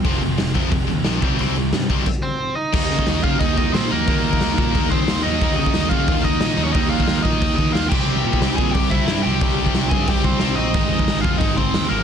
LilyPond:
<<
  \new Staff \with { instrumentName = "Overdriven electric guitar" } { \time 4/4 \key ees \mixolydian \tempo 4 = 180 r1 | r2 r8 <c' c''>4 <ees' ees''>8~ | <ees' ees''>4. <f' f''>8 <ees' ees''>8 <ees' ees''>8 <c' c''>8 <bes bes'>8~ | <bes bes'>2~ <bes bes'>8 <c' c''>4 <ees' ees''>8~ |
<ees' ees''>8 <ees' ees''>4 <f' f''>4 <ees' ees''>8 <ees' ees''>8. <des' des''>16 | <ees' ees''>8 <f' f''>4 <ees' ees''>4 <ees' ees''>8 <f' f''>8 <g' g''>8~ | <g' g''>4. <aes' aes''>8 <g' g''>8 <e' e''>4 <g' g''>8~ | <g' g''>4. <aes' aes''>8 <g' g''>8 <c' c''>4 <ees' ees''>8~ |
<ees' ees''>4. <f' f''>8 <ees' ees''>8 <c' c''>4 <bes bes'>8 | }
  \new Staff \with { instrumentName = "Distorted electric guitar" } { \clef bass \time 4/4 \key ees \mixolydian <f aes c' f'>2.~ <f aes c' f'>8 <c ees g c' g'>8~ | <c ees g c' g'>2 r2 | <ees g bes ees'>2.~ <ees g bes ees'>8 <ees g bes ees'>8 | <ees g bes ees'>2.~ <ees g bes ees'>8 <ees g bes ees'>8 |
<ees g bes ees'>2.~ <ees g bes ees'>8 <ees g bes ees'>8 | <ees g bes ees'>2.~ <ees g bes ees'>8 <c g c' e'>8~ | <c g c' e'>2. <c g c' e'>8 <c g c' e'>8~ | <c g c' e'>2. <c g c' e'>8 r8 |
<aes, ees aes c' ees'>2.~ <aes, ees aes c' ees'>8 <aes, ees aes c' ees'>8 | }
  \new Staff \with { instrumentName = "Distorted electric guitar" } { \clef bass \time 4/4 \key ees \mixolydian <f, c f>8 <f, c>8 <f, c>8 <f, c f>8 <f, c>8 <f, c>8 <f, c f>8 <c g c'>8 | <c g c'>8 <c g>8 <c g>8 <c g c'>8 r2 | <ees bes ees'>4. <ees bes ees'>4. <ees bes ees'>4 | <ees bes ees'>4. <ees bes ees'>4. <ees bes ees'>4 |
<ees bes ees'>4. <ees bes ees'>4. <ees bes ees'>4 | <ees bes ees'>4. <ees bes ees'>4. <ees bes ees'>8 <c g c'>8~ | <c g c'>4 <c g c'>4. <c g c'>4 <c g c'>8~ | <c g c'>4 <c g c'>4. <c g c'>4 r8 |
<aes, ees aes>4. <aes, ees aes>4. <aes, ees aes>4 | }
  \new Staff \with { instrumentName = "Distorted electric guitar" } { \clef bass \time 4/4 \key ees \mixolydian <f, c f>8 <f, c>8 <f, c>8 <f, c f>8 <f, c>8 <f, c>8 <f, c f>8 <c g c'>8 | <c g c'>8 <c g>8 <c g>8 <c g c'>8 r2 | <ees bes ees'>2.~ <ees bes ees'>8 <ees bes ees'>8 | <ees bes ees'>2.~ <ees bes ees'>8 <ees bes ees'>8 |
<ees bes ees'>2.~ <ees bes ees'>8 <ees bes ees'>8 | <ees bes ees'>2.~ <ees bes ees'>8 <c g c'>8~ | <c g c'>2. <c g c'>8 <c g c'>8~ | <c g c'>2. <c g c'>8 r8 |
<aes, ees aes>2.~ <aes, ees aes>8 <aes, ees aes>8 | }
  \new Staff \with { instrumentName = "Picked electric bass" } { \clef bass \time 4/4 \key ees \mixolydian f,,8 f,,8 f,,8 f,8 f,,8 ees,8 bes,,8 c,8 | c,8 c,8 g,8 c,8 r2 | ees,8 des8 ees,8 des8 ees,4 bes,8 ees,8 | ees,4 ees,8 bes,8 ees,8 ees,8 ees,8 ees,8 |
ees,8 des8 ees,8 des8 ees,4 bes,8 ees,8 | ees,4 ees,8 bes,8 ees,8 ees,8 ees,8 c,8 | c,8 bes,8 c,8 bes,8 c,4 g,8 c,8 | c,4 c,8 g,8 c,8 c,8 c,8 bes,,8 |
aes,,8 f,8 aes,,8 f,8 aes,,4 ees,8 aes,,8 | }
  \new DrumStaff \with { instrumentName = "Drums" } \drummode { \time 4/4 <hho bd>8 hho8 <hho sn>8 <hho bd>8 <hho bd>8 hho8 <hho sn>8 <hho bd>8 | hho8 hho8 <hho sn>8 <hho bd>8 <cymc bd>4 r4 | <cymc bd>8. bd16 <hho sn>8 bd8 <hho bd>8 bd8 <hho sn>4 | <hho bd>8. bd16 <hho sn>8 bd8 <hho bd>8 bd8 <hho sn>4 |
<hho bd>8. bd16 <hho sn>8 bd8 <hho bd>8 bd8 <hho sn>4 | <hho bd>8. bd16 <hho sn>8 bd8 <hho bd>8 bd8 <hho sn>8 <cymc bd>8 | r8. bd16 <hho sn>8 bd8 <hho bd>8 bd8 <hho sn>4 | <hho bd>8. bd16 <hho sn>8 bd8 <hho bd>8 bd8 <hho sn>4 |
<hho bd>8. bd16 <hho sn>8 bd8 <hho bd>8 bd8 <hho sn>4 | }
>>